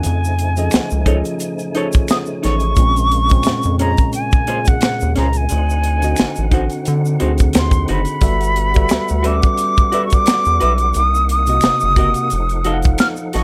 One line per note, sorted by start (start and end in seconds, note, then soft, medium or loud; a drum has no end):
0.00 5.45 C#3 medium
0.00 2.73 F3 medium
0.00 2.73 A3 medium
0.00 2.73 D#4 medium
0.00 1.23 G#5 medium
0.00 2.74 G#5 medium
0.00 closed hi-hat medium
0.04 0.69 F2 loud
0.04 shaker medium
0.25 shaker medium
0.39 closed hi-hat medium
0.57 1.02 F3 medium
0.57 1.02 C#4 medium
0.57 1.02 G#4 medium
0.57 1.03 A4 medium
0.57 1.03 D#5 medium
0.57 closed hi-hat medium
0.57 shaker medium
0.71 0.81 C#2 soft
0.71 finger snap medium
0.71 snare loud
0.71 closed hi-hat medium
0.71 shaker medium
0.90 1.23 C#2 medium
0.90 shaker medium
1.06 1.68 F3 medium
1.06 1.68 C#4 medium
1.06 1.17 D#4 medium
1.06 1.69 G#4 medium
1.06 1.17 A4 medium
1.06 1.69 A4 medium
1.06 1.18 C#5 medium
1.06 1.69 D#5 medium
1.06 kick medium
1.06 closed hi-hat medium
1.25 closed hi-hat soft
1.25 shaker soft
1.40 closed hi-hat medium
1.40 shaker medium
1.59 closed hi-hat soft
1.59 shaker soft
1.75 2.68 F3 medium
1.75 2.68 C#4 medium
1.75 1.86 D#4 medium
1.75 2.68 G#4 medium
1.75 2.69 A4 medium
1.75 1.86 A4 medium
1.75 2.69 C#5 medium
1.75 1.87 C#5 medium
1.75 closed hi-hat medium
1.92 kick loud
1.92 closed hi-hat soft
1.92 shaker medium
2.08 2.18 D#6 loud
2.08 finger snap medium
2.08 snare loud
2.08 closed hi-hat medium
2.08 shaker medium
2.26 shaker soft
2.43 2.75 A1 medium
2.43 2.54 D#4 medium
2.43 2.54 A4 medium
2.43 2.55 C#5 medium
2.43 3.76 C#6 loud
2.43 snare soft
2.43 closed hi-hat medium
2.60 closed hi-hat soft
2.60 shaker soft
2.74 3.41 A#1 loud
2.74 3.24 A#2 medium
2.74 5.45 G#3 medium
2.74 3.25 G#3 medium
2.74 5.46 A#3 medium
2.74 kick medium
2.74 closed hi-hat medium
2.74 shaker medium
2.79 3.25 C4 medium
2.79 3.25 C#4 medium
2.96 closed hi-hat soft
2.96 shaker medium
3.11 closed hi-hat medium
3.29 3.74 A#2 medium
3.29 3.75 G#3 medium
3.29 3.75 C4 loud
3.29 3.75 C#4 medium
3.29 kick medium
3.29 closed hi-hat soft
3.29 shaker medium
3.43 3.53 F2 soft
3.43 finger snap medium
3.43 snare loud
3.43 closed hi-hat medium
3.43 shaker medium
3.63 3.95 F2 medium
3.63 closed hi-hat soft
3.63 shaker soft
3.79 4.41 A#2 medium
3.79 4.41 G#3 medium
3.79 3.90 C#4 medium
3.79 4.42 C#4 medium
3.79 3.91 G#4 medium
3.79 3.91 C5 medium
3.79 4.42 D#5 medium
3.79 4.11 A#5 medium
3.79 closed hi-hat medium
3.97 kick medium
3.97 closed hi-hat soft
3.97 shaker soft
4.13 4.69 G#5 medium
4.13 closed hi-hat medium
4.13 shaker medium
4.32 kick loud
4.32 shaker soft
4.47 5.50 A#2 medium
4.47 5.50 G#3 medium
4.47 4.58 C#4 medium
4.47 5.50 C#4 medium
4.47 4.59 G#4 medium
4.47 5.51 G#4 medium
4.47 4.59 C5 medium
4.47 closed hi-hat medium
4.65 5.16 F#5 medium
4.65 kick loud
4.65 closed hi-hat soft
4.65 shaker medium
4.81 finger snap medium
4.81 snare loud
4.81 closed hi-hat medium
4.81 shaker medium
5.00 5.15 D#2 medium
5.00 shaker soft
5.16 5.48 C#2 loud
5.16 5.26 C#4 medium
5.16 5.27 G#4 medium
5.16 5.28 C5 medium
5.16 5.39 A#5 medium
5.16 snare soft
5.16 closed hi-hat medium
5.33 closed hi-hat soft
5.33 shaker soft
5.37 6.72 G#5 medium
5.49 6.15 D2 loud
5.49 8.20 D3 medium
5.49 8.20 C4 medium
5.49 8.20 D#4 medium
5.49 13.44 F#5 medium
5.49 closed hi-hat medium
5.49 shaker medium
5.70 shaker medium
5.84 closed hi-hat medium
6.02 6.47 D3 medium
6.02 6.47 C4 medium
6.02 6.48 F#4 medium
6.02 6.48 D#5 medium
6.02 closed hi-hat medium
6.02 shaker soft
6.16 6.27 A1 medium
6.16 finger snap medium
6.16 snare loud
6.16 closed hi-hat medium
6.16 shaker medium
6.36 6.68 A1 medium
6.36 closed hi-hat soft
6.36 shaker soft
6.51 7.14 D3 medium
6.51 7.14 C4 medium
6.51 6.63 D#4 medium
6.51 7.14 F#4 medium
6.51 6.64 F#4 medium
6.51 6.64 C5 medium
6.51 7.15 F#5 medium
6.51 kick medium
6.51 closed hi-hat medium
6.70 closed hi-hat soft
6.70 shaker soft
6.85 7.18 D3 loud
6.85 closed hi-hat medium
6.85 shaker medium
7.05 shaker soft
7.20 7.52 D2 medium
7.20 8.13 D3 medium
7.20 8.13 C4 medium
7.20 7.31 D#4 medium
7.20 7.31 F#4 medium
7.20 8.14 F#4 medium
7.20 8.14 G#4 medium
7.20 7.32 C5 medium
7.20 closed hi-hat medium
7.38 kick medium
7.38 closed hi-hat soft
7.38 shaker medium
7.53 7.86 D#2 medium
7.53 finger snap medium
7.53 snare loud
7.53 closed hi-hat medium
7.53 shaker medium
7.58 7.88 C6 medium
7.71 kick medium
7.71 closed hi-hat soft
7.71 shaker soft
7.88 8.06 F#1 loud
7.88 7.99 D#4 medium
7.88 7.99 F#4 medium
7.88 8.00 C5 medium
7.88 9.29 B5 medium
7.88 closed hi-hat medium
8.05 closed hi-hat soft
8.05 shaker soft
8.21 8.87 G1 loud
8.21 8.69 G3 medium
8.21 10.92 G3 medium
8.21 10.93 B3 medium
8.21 8.69 F#4 medium
8.21 8.70 A4 medium
8.21 8.70 B4 medium
8.21 8.70 E5 loud
8.21 kick medium
8.21 closed hi-hat medium
8.21 shaker medium
8.41 closed hi-hat soft
8.41 shaker medium
8.56 closed hi-hat medium
8.74 9.20 G3 medium
8.74 9.20 F#4 medium
8.74 9.20 A4 medium
8.74 9.21 B4 medium
8.74 9.21 E5 loud
8.74 kick medium
8.74 closed hi-hat medium
8.74 shaker soft
8.89 8.99 D2 soft
8.89 finger snap medium
8.89 snare loud
8.89 closed hi-hat medium
8.89 shaker medium
9.08 9.41 D2 medium
9.08 closed hi-hat soft
9.08 shaker soft
9.23 9.86 G3 medium
9.23 9.87 C#4 medium
9.23 9.34 F#4 medium
9.23 9.87 F#4 medium
9.23 9.87 A4 medium
9.23 9.35 B4 medium
9.23 9.87 B4 medium
9.23 9.36 E5 medium
9.23 closed hi-hat medium
9.27 10.05 D6 loud
9.42 kick medium
9.42 closed hi-hat soft
9.42 shaker soft
9.57 closed hi-hat medium
9.57 shaker medium
9.77 kick loud
9.77 shaker soft
9.92 10.95 G3 medium
9.92 10.03 F#4 medium
9.92 10.95 F#4 medium
9.92 10.95 A4 medium
9.92 10.04 B4 medium
9.92 10.96 B4 medium
9.92 10.96 D5 medium
9.92 10.04 E5 medium
9.92 closed hi-hat medium
10.06 10.16 C#6 medium
10.10 kick medium
10.10 closed hi-hat soft
10.10 shaker medium
10.14 10.99 D6 loud
10.26 finger snap medium
10.26 snare loud
10.26 closed hi-hat medium
10.26 shaker medium
10.45 10.60 E2 medium
10.45 shaker soft
10.60 10.93 B1 loud
10.60 10.71 F#4 medium
10.60 10.72 B4 medium
10.60 10.73 E5 medium
10.60 closed hi-hat medium
10.78 closed hi-hat soft
10.78 shaker soft
10.94 11.60 C2 loud
10.94 12.29 C3 medium
10.94 12.30 A#3 medium
10.94 12.29 D#4 medium
10.94 11.30 D#6 loud
10.94 closed hi-hat medium
10.94 shaker medium
11.15 shaker medium
11.29 12.70 D#6 loud
11.29 closed hi-hat medium
11.46 11.92 C3 medium
11.46 11.93 A#3 medium
11.46 11.93 F#4 medium
11.46 11.93 D#5 medium
11.46 closed hi-hat medium
11.46 shaker soft
11.61 finger snap medium
11.61 snare loud
11.61 closed hi-hat medium
11.61 shaker medium
11.65 11.72 F#1 soft
11.80 12.13 F#1 loud
11.80 shaker soft
11.96 12.31 C3 medium
11.96 12.32 A#3 medium
11.96 12.08 F#4 medium
11.96 12.32 F#4 medium
11.96 12.09 A#4 medium
11.96 12.09 D#5 medium
11.96 12.33 F#5 medium
11.96 kick medium
11.96 closed hi-hat medium
12.14 closed hi-hat soft
12.14 shaker soft
12.30 12.96 F1 loud
12.30 13.44 F3 medium
12.30 13.44 D#4 medium
12.30 13.44 A4 medium
12.30 closed hi-hat medium
12.30 shaker medium
12.49 closed hi-hat soft
12.49 shaker soft
12.64 13.44 F3 medium
12.64 13.44 D#4 medium
12.64 12.76 F#4 medium
12.64 12.77 A4 medium
12.64 13.44 A4 medium
12.64 12.77 D#5 medium
12.64 12.73 F5 medium
12.64 closed hi-hat medium
12.74 13.44 F#5 medium
12.82 kick medium
12.82 closed hi-hat soft
12.82 shaker medium
12.98 13.08 F6 loud
12.98 finger snap medium
12.98 snare loud
12.98 closed hi-hat medium
12.98 shaker medium
13.16 shaker soft
13.33 13.44 A1 medium
13.33 13.44 F#4 medium
13.33 13.44 A4 medium
13.33 13.44 D#5 medium
13.33 13.44 C#6 loud
13.33 snare soft
13.33 closed hi-hat medium